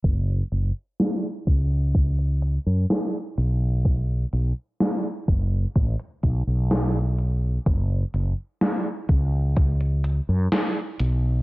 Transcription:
<<
  \new Staff \with { instrumentName = "Fretless electric bass" } { \clef bass \time 4/4 \key fis \minor \tempo 4 = 63 fis,,8 fis,,16 r8. cis,4~ cis,16 fis,16 r8 b,,8~ | b,,8 b,,16 r8. fis,,8 a,,16 r16 b,,16 b,,4~ b,,16 | fis,,8 fis,,16 r8. cis,4~ cis,16 fis,16 r8 b,,8 | }
  \new DrumStaff \with { instrumentName = "Drums" } \drummode { \time 4/4 <hh bd>8 hh8 <hh sn>8 <hh bd>8 <hh bd>16 hh16 hh8 <hh sn>8 hh8 | <hh bd>8 hh8 <hh sn>8 <hh bd>8 <hh bd>16 hh16 <hh bd>8 <hh sn>8 hh8 | <hh bd>8 hh8 <hh sn>8 <hh bd>8 <hh bd>16 hh16 hh8 <hh sn>8 hh8 | }
>>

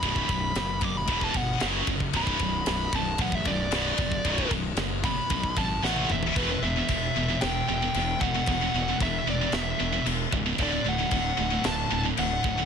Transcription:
<<
  \new Staff \with { instrumentName = "Lead electric guitar" } { \time 4/4 \key e \dorian \tempo 4 = 114 b''4. d'''16 b''8 a''16 fis''8 r4 | b''4. a''8 fis''16 e''16 d''4.~ | d''8 r4 b''4 a''8 fis''8 e''8 | b'8 e''4. g''8 g''4 fis''8~ |
fis''4 e''8 d''8 e''4 r4 | d''8 fis''4. a''8 a''8 fis''4 | }
  \new Staff \with { instrumentName = "Distorted electric guitar" } { \clef bass \time 4/4 \key e \dorian <b,, fis, b,>8 <b,, fis,>8 <b,, fis,>8 <b,, fis,>8 <e, b, e>8 <e, b,>8 <fis, cis fis>8 <fis, cis>8 | <b,, fis, b,>8 <b,, fis,>8 <b,, fis,>8 <b,, fis,>8 <b,, fis,>8 <b,, fis,>8 <b,, fis, b,>8 <b,, fis,>8 | <b,, fis, b,>8 <b,, fis,>8 <b,, fis,>8 <b,, fis,>8 <b,, fis,>8 <b,, fis,>8 <a, e a>8 <a, e>8 | <e, b, e>16 <e, b,>16 <e, b,>16 <e, b,>16 <e, b,>8 <e, b,>16 <e, b,>16 <e, b,>8 <e, b,>16 <e, b,>16 <e, b,>8 <e, b,>16 <e, b,>16 |
<e, b,>16 <e, b,>16 <e, b,>16 <e, b,>16 <e, b,>8 <e, b,>16 <e, b,>16 <e, b,>8 <e, b,>16 <e, b,>16 <e, b,>8 <e, b,>16 <e, b,>16 | <d, a, d>16 <d, a,>16 <d, a,>16 <d, a,>16 <d, a,>8 <d, a,>16 <d, a,>16 <d, a,>8 <d, a,>16 <d, a,>16 <d, a,>8 <d, a,>16 <d, a,>16 | }
  \new Staff \with { instrumentName = "Distorted electric guitar" } { \clef bass \time 4/4 \key e \dorian <b,, fis, b,>8 <b,, fis,>8 <b,, fis,>8 <b,, fis,>8 <e, b, e>8 <e, b,>8 <fis, cis fis>8 <fis, cis>8 | <b,, fis, b,>8 <b,, fis,>8 <b,, fis,>8 <b,, fis,>8 <b,, fis,>8 <b,, fis,>8 <b,, fis, b,>8 <b,, fis,>8 | <b,, fis, b,>8 <b,, fis,>8 <b,, fis,>8 <b,, fis,>8 <b,, fis,>8 <b,, fis,>8 <a, e a>8 <a, e>8 | <e, b, e>16 <e, b,>16 <e, b,>16 <e, b,>16 <e, b,>8 <e, b,>16 <e, b,>16 <e, b,>8 <e, b,>16 <e, b,>16 <e, b,>8 <e, b,>16 <e, b,>16 |
<e, b,>16 <e, b,>16 <e, b,>16 <e, b,>16 <e, b,>8 <e, b,>16 <e, b,>16 <e, b,>8 <e, b,>16 <e, b,>16 <e, b,>8 <e, b,>16 <e, b,>16 | <d, a, d>16 <d, a,>16 <d, a,>16 <d, a,>16 <d, a,>8 <d, a,>16 <d, a,>16 <d, a,>8 <d, a,>16 <d, a,>16 <d, a,>8 <d, a,>16 <d, a,>16 | }
  \new Staff \with { instrumentName = "Fingered electric bass" } { \clef bass \time 4/4 \key e \dorian b,,,8 b,,,8 fis,,4 e,,8 g,,8 fis,,8 fis,,8 | b,,,8 b,,,8 b,,,8 b,,,8 a,,8 b,,,8 b,,,8 fis,,8 | b,,,8 b,,,8 fis,,4 b,,8 gis,,8 a,,8 dis,,8 | e,,8 e,,8 e,,8 e,,8 e,,8 e,,8 e,,8 e,,8 |
e,,8 e,,8 e,,8 e,,8 e,,8 e,,8 e,,8 cis,,8 | d,,8 d,,8 d,,8 d,,8 d,,8 d,,8 d,,8 d,,8 | }
  \new DrumStaff \with { instrumentName = "Drums" } \drummode { \time 4/4 <bd cymr>16 bd16 <bd cymr>8 <cymr sn>8 <bd cymr>8 <bd cymr>16 bd16 <bd cymr>8 <cymr sn>8 <bd cymr>16 bd16 | <bd cymr>16 bd16 <bd cymr>8 <cymr sn>8 <bd cymr>8 <bd cymr>16 bd16 <bd cymr>8 <cymr sn>8 <bd cymr>16 bd16 | <bd cymr>16 bd16 <bd cymr>8 <cymr sn>8 <bd cymr>8 <bd cymr>16 bd16 <bd cymr>8 sn16 tommh16 toml16 tomfh16 | <cymc bd>4 <cymc bd>4 <cymc sn>4 cymc8 bd8 |
<cymc bd>4 <cymc bd>4 <cymc sn>4 cymc8 bd8 | <cymc bd>4 <cymc bd>4 <cymc sn>4 cymc8 bd8 | }
>>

